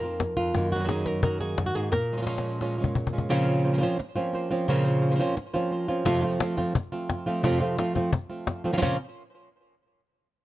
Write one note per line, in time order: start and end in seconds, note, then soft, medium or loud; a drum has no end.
0.00 0.37 F2 medium
0.00 0.56 A#3 soft
0.00 0.20 A#3 soft
0.00 0.20 C4 soft
0.00 0.20 F4 soft
0.00 0.36 A#4 loud
0.04 0.20 F3 soft
0.20 muted nylon-string guitar stroke medium
0.20 cajon bass medium
0.20 cajon slap loud
0.37 0.55 F2 medium
0.37 0.72 F4 medium
0.37 cajon slap soft
0.55 1.57 F#2 medium
0.55 1.93 D#3 medium
0.55 2.80 A#3 medium
0.55 1.92 D#4 soft
0.55 muted nylon-string guitar stroke medium
0.55 cajon bass loud
0.55 cajon slap soft
0.75 0.78 F#3 soft
0.75 0.79 A#3 soft
0.75 0.79 D#4 soft
0.75 0.79 F#4 soft
0.79 0.83 F#3 medium
0.79 0.83 A#3 soft
0.79 0.84 D#4 medium
0.79 0.84 F#4 medium
0.84 0.87 F#3 medium
0.84 0.88 A#3 medium
0.84 0.88 D#4 medium
0.84 0.88 F#4 medium
0.88 1.21 F#3 medium
0.88 1.22 A#3 medium
0.88 1.22 D#4 medium
0.88 1.23 F#4 medium
0.88 1.06 G#4 loud
0.88 cajon slap loud
1.06 1.22 A#4 medium
1.06 cajon bass medium
1.06 cajon slap soft
1.23 1.40 F#3 medium
1.23 1.40 A#3 medium
1.23 1.40 D#4 medium
1.23 1.39 F#4 medium
1.23 1.40 A#4 loud
1.23 cajon bass loud
1.40 1.57 A#3 soft
1.40 1.57 D#4 soft
1.40 1.57 F#4 soft
1.40 1.66 G#4 loud
1.58 1.75 F#2 medium
1.58 muted nylon-string guitar stroke medium
1.58 cajon bass medium
1.58 cajon slap loud
1.66 1.75 F#4 medium
1.75 1.93 G#2 medium
1.75 1.93 A#3 soft
1.75 1.92 D#4 soft
1.75 1.92 F#4 soft
1.75 1.92 G#4 medium
1.75 cajon slap soft
1.92 3.28 A#2 medium
1.92 3.30 A#4 loud
1.92 muted nylon-string guitar stroke medium
1.92 cajon bass medium
1.92 cajon slap soft
2.12 2.16 F3 soft
2.12 2.16 G#3 soft
2.12 2.17 C#4 soft
2.12 2.17 F4 medium
2.17 2.20 F3 soft
2.17 2.21 G#3 medium
2.17 2.21 C#4 medium
2.17 2.21 F4 medium
2.21 2.25 F3 medium
2.21 2.25 G#3 medium
2.21 2.26 C#4 medium
2.21 2.26 F4 medium
2.26 2.60 A#2 medium
2.26 2.60 F3 medium
2.26 2.61 G#3 medium
2.26 2.61 C#4 medium
2.26 2.61 F4 medium
2.26 cajon slap medium
2.38 cajon slap medium
2.61 2.78 A#2 medium
2.61 2.78 F3 medium
2.61 2.78 G#3 medium
2.61 2.78 C#4 medium
2.61 2.77 F4 medium
2.61 cajon slap medium
2.78 2.95 G#3 soft
2.78 2.95 C#4 soft
2.78 2.95 F4 soft
2.84 cajon bass medium
2.95 muted nylon-string guitar stroke medium
2.95 cajon bass medium
3.07 cajon bass medium
3.13 3.30 G#3 soft
3.13 3.30 C#4 soft
3.13 3.30 F4 medium
3.18 cajon bass medium
3.30 3.47 A#2 medium
3.30 3.81 C#3 medium
3.30 3.47 F3 medium
3.30 3.47 A#3 medium
3.30 3.82 C4 loud
3.30 3.47 C#4 medium
3.30 3.46 F4 medium
3.30 3.46 C5 medium
3.47 3.65 A#3 soft
3.47 3.64 C#4 soft
3.47 3.64 F4 soft
3.47 3.63 C5 soft
3.65 3.72 A#3 soft
3.65 3.73 C#4 soft
3.65 3.73 F4 soft
3.65 3.73 C5 soft
3.73 3.76 F3 soft
3.73 3.77 A#3 soft
3.73 3.77 C#4 soft
3.73 3.77 F4 soft
3.73 3.77 C5 soft
3.77 3.81 F3 medium
3.77 3.81 A#3 medium
3.77 3.81 C#4 medium
3.77 3.82 F4 medium
3.77 3.82 C5 medium
3.82 3.98 A#2 medium
3.82 3.98 F3 medium
3.82 3.98 A#3 medium
3.82 3.98 C4 medium
3.82 3.98 C#4 medium
3.82 3.98 F4 medium
3.82 3.98 C5 medium
3.99 muted nylon-string guitar stroke soft
4.16 4.51 F3 soft
4.16 4.32 A#3 soft
4.16 4.50 C4 medium
4.16 4.33 C#4 soft
4.16 4.33 F4 soft
4.16 4.33 C5 soft
4.33 4.67 A#3 medium
4.33 4.68 F4 medium
4.33 4.68 C5 medium
4.51 4.67 F3 soft
4.51 4.68 C4 medium
4.51 4.68 C#4 medium
4.51 4.67 F4 medium
4.68 4.85 A#2 medium
4.68 5.19 C#3 loud
4.68 4.85 F3 medium
4.68 4.85 A#3 medium
4.68 5.20 C4 loud
4.68 4.85 C#4 medium
4.68 4.84 F4 medium
4.68 4.84 C5 medium
4.85 5.02 A#3 soft
4.85 5.02 C#4 soft
4.85 5.01 F4 soft
4.85 5.01 C5 soft
5.02 5.10 A#3 soft
5.02 5.10 C#4 soft
5.02 5.10 F4 soft
5.02 5.10 C5 soft
5.10 5.14 F3 soft
5.10 5.14 A#3 soft
5.10 5.15 C#4 medium
5.10 5.14 F4 soft
5.10 5.15 C5 soft
5.15 5.18 F3 medium
5.15 5.19 A#3 medium
5.15 5.19 C#4 medium
5.15 5.19 F4 medium
5.15 5.20 C5 medium
5.19 5.35 A#2 medium
5.19 5.35 F3 medium
5.19 5.36 A#3 medium
5.19 5.36 C4 medium
5.19 5.36 C#4 medium
5.19 5.36 F4 medium
5.19 5.36 C5 medium
5.36 muted nylon-string guitar stroke medium
5.54 5.89 F3 soft
5.54 5.70 A#3 soft
5.54 5.88 C4 medium
5.54 5.71 C#4 soft
5.54 5.71 F4 soft
5.54 5.71 C5 medium
5.71 6.05 A#3 medium
5.71 6.05 F4 medium
5.71 6.06 C5 medium
5.88 6.04 F3 medium
5.88 6.05 C4 soft
5.88 6.06 C#4 soft
5.88 6.05 F4 medium
6.06 6.40 F2 medium
6.06 6.40 C3 medium
6.06 6.39 F3 medium
6.06 6.40 A3 medium
6.06 6.40 C4 medium
6.06 6.41 F4 medium
6.06 cajon bass loud
6.06 cajon slap soft
6.23 6.39 F3 soft
6.23 6.40 A3 medium
6.23 6.40 C4 medium
6.23 6.40 F4 medium
6.40 6.74 F3 soft
6.40 6.74 A3 soft
6.40 6.74 C4 soft
6.40 6.74 F4 medium
6.40 cajon slap loud
6.57 6.74 F3 soft
6.57 6.74 A3 soft
6.57 6.74 C4 medium
6.57 6.74 F4 medium
6.57 cajon bass medium
6.57 cajon slap soft
6.75 muted nylon-string guitar stroke medium
6.75 cajon bass loud
6.92 7.27 F3 soft
6.92 7.27 A3 soft
6.92 7.26 C4 medium
6.92 7.26 F4 medium
7.10 cajon bass medium
7.10 cajon slap loud
7.27 7.44 F3 soft
7.27 7.44 A3 soft
7.27 7.44 C4 soft
7.27 7.43 F4 medium
7.44 7.78 F2 medium
7.44 7.78 C3 medium
7.44 7.77 F3 medium
7.44 7.77 A3 medium
7.44 7.78 C4 medium
7.44 7.78 F4 medium
7.44 cajon bass loud
7.44 cajon slap soft
7.60 7.77 F3 soft
7.60 7.77 A3 medium
7.60 7.78 C4 medium
7.60 7.77 F4 medium
7.78 8.12 F3 soft
7.78 8.12 A3 soft
7.78 8.12 C4 soft
7.78 8.12 F4 soft
7.78 cajon slap loud
7.95 8.12 F3 medium
7.95 8.12 A3 medium
7.95 8.12 C4 medium
7.95 8.12 F4 medium
7.95 cajon bass medium
8.13 muted nylon-string guitar stroke soft
8.13 cajon bass loud
8.30 8.65 F3 soft
8.30 8.64 A3 soft
8.30 8.64 C4 soft
8.30 8.63 F4 soft
8.47 cajon bass medium
8.47 cajon slap loud
8.65 8.71 F3 soft
8.65 8.73 A3 soft
8.65 8.73 C4 soft
8.65 8.72 F4 soft
8.73 8.76 C#3 medium
8.73 8.76 F3 soft
8.73 8.76 A#3 soft
8.73 8.77 C4 medium
8.73 8.77 C#4 soft
8.73 8.77 F4 soft
8.73 8.77 C5 soft
8.77 8.81 C#3 medium
8.77 8.81 F3 medium
8.77 8.81 A#3 medium
8.77 8.82 C4 medium
8.77 8.81 C#4 medium
8.77 8.81 F4 medium
8.77 8.82 C5 medium
8.82 8.96 A#2 medium
8.82 8.96 C#3 medium
8.82 8.96 F3 medium
8.82 8.96 A#3 medium
8.82 8.96 C4 loud
8.82 8.96 C#4 medium
8.82 8.96 F4 medium
8.82 8.96 C5 medium
8.82 cajon bass loud